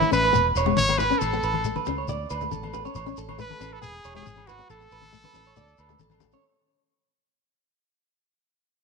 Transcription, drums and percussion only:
0.01 high conga, shekere
0.13 low agogo, shekere
0.34 shekere
0.56 low agogo, shekere
0.66 low conga
0.77 high conga, shekere
0.88 high conga, low agogo
0.98 low conga, shekere
1.11 shekere
1.21 low agogo, shekere
1.33 shekere
1.43 shekere
1.53 high conga, low agogo
1.64 shekere
1.75 high conga, shekere
1.86 low conga, low agogo, shekere
2.08 shekere
2.30 low agogo, shekere
2.41 low conga, shekere
2.52 high conga, shekere
2.63 high conga, low agogo
2.74 low conga, shekere
2.85 shekere
2.95 low agogo, shekere
3.07 shekere
3.17 shekere
3.28 high conga, low agogo
3.39 shekere
3.50 high conga, shekere
3.60 low conga, low agogo, shekere
3.83 shekere
4.04 low agogo, shekere
4.15 low conga, shekere
4.26 high conga, shekere
4.37 high conga, low agogo
4.47 low conga, shekere
4.60 shekere
4.70 low agogo, shekere
4.81 shekere
4.91 shekere
5.02 high conga, low agogo, shekere
5.13 shekere
5.24 high conga, shekere
5.34 low conga, low agogo, shekere
5.46 shekere
5.56 shekere
5.68 shekere
5.78 low agogo, shekere
5.89 low conga, shekere
5.99 high conga, shekere
6.10 high conga, low agogo, shekere
6.20 high conga, low conga, shekere
6.32 shekere

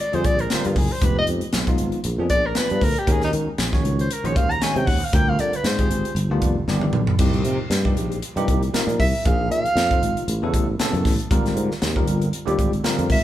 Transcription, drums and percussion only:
0.13 closed hi-hat
0.24 kick, closed hi-hat
0.39 closed hi-hat
0.50 snare, closed hi-hat
0.65 closed hi-hat
0.76 kick, open hi-hat
1.01 kick, closed hi-hat
1.27 closed hi-hat
1.41 closed hi-hat
1.52 snare, closed hi-hat
1.67 kick, closed hi-hat
1.78 closed hi-hat
1.92 closed hi-hat
2.04 closed hi-hat
2.30 kick, closed hi-hat
2.55 snare, closed hi-hat
2.70 closed hi-hat
2.81 kick, open hi-hat
2.96 closed hi-hat
3.07 kick, closed hi-hat
3.22 snare, closed hi-hat
3.33 closed hi-hat
3.58 snare, closed hi-hat
3.73 kick, snare
3.85 closed hi-hat
3.99 closed hi-hat
4.11 closed hi-hat
4.25 closed hi-hat
4.36 kick, closed hi-hat
4.51 closed hi-hat
4.62 snare, closed hi-hat
4.76 closed hi-hat
4.87 kick, open hi-hat
5.13 kick, closed hi-hat
5.39 closed hi-hat
5.53 closed hi-hat
5.64 snare, closed hi-hat
5.79 kick, closed hi-hat
5.91 closed hi-hat
6.05 closed hi-hat
6.16 closed hi-hat
6.42 kick, closed hi-hat
6.68 snare
6.81 high tom
6.93 mid tom
7.07 floor tom
7.19 kick, closed hi-hat, crash
7.33 closed hi-hat
7.45 closed hi-hat
7.71 snare, closed hi-hat
7.85 kick
7.97 closed hi-hat
8.12 closed hi-hat
8.22 closed hi-hat
8.37 closed hi-hat
8.48 kick, closed hi-hat
8.63 closed hi-hat
8.74 snare, closed hi-hat
8.89 closed hi-hat
9.00 kick, open hi-hat
9.25 kick, closed hi-hat
9.51 closed hi-hat
9.65 closed hi-hat
9.77 snare, closed hi-hat
9.91 kick, closed hi-hat
10.03 closed hi-hat
10.17 closed hi-hat
10.28 closed hi-hat
10.54 kick, closed hi-hat
10.79 snare, closed hi-hat
10.94 closed hi-hat
11.05 kick, snare, open hi-hat
11.20 closed hi-hat
11.31 kick, closed hi-hat
11.46 snare, closed hi-hat
11.57 closed hi-hat
11.71 snare
11.82 snare, closed hi-hat
11.96 kick
12.07 closed hi-hat
12.22 closed hi-hat
12.33 closed hi-hat
12.48 closed hi-hat
12.59 kick, closed hi-hat
12.73 closed hi-hat
12.84 snare, closed hi-hat
12.99 closed hi-hat
13.10 kick, open hi-hat

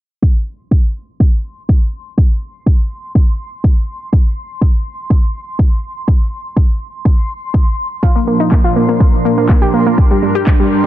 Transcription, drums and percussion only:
0.22 kick
0.71 kick
1.20 kick
1.69 kick
2.18 kick
2.66 kick
3.15 kick
3.64 kick
4.13 kick
4.61 kick
5.10 kick
5.59 kick
6.08 kick
6.57 kick
7.05 kick
7.54 kick
8.03 kick
8.52 kick, clap
9.00 kick
9.49 kick, clap
9.98 kick
10.47 kick, clap

